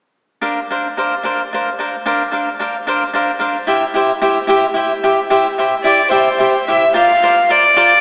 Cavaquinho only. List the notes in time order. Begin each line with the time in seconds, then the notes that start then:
0.41 D4 A#4 C5 F5
0.70 D4 A#4 C5 F5
0.97 D4 A#4 C5 F5
1.23 D4 A#4 C5 F5
1.53 D4 A#4 C5 F5
1.79 D4 A#4 C5 F5
2.06 D4 A#4 C5 F5
2.32 D4 A#4 C5 F5
2.59 D4 A#4 C5 F5
2.87 D4 A#4 C5 F5
3.13 D4 A#4 C5 F5
3.39 D4 A#4 C5 F5
3.67 E4 G4 C5 E5
3.94 E4 G4 C5 E5
4.22 E4 G4 C5 E5
4.47 E4 G4 C5 E5
4.74 E4 G4 C5 E5
5.03 E4 G4 C5 E5
5.30 E4 G4 C5 E5
5.58 E4 G4 C5 E5
5.84 E4 G4 C5 E5
6.10 E4 G4 C5 E5
6.38 E4 G4 C5 E5
6.68 E4 G4 C5 E5
6.94 F4 A#4 C5 D5
7.22 F4 A#4 C5 D5
7.49 F4 A#4 C5 D5
7.76 F4 A#4 C5 D5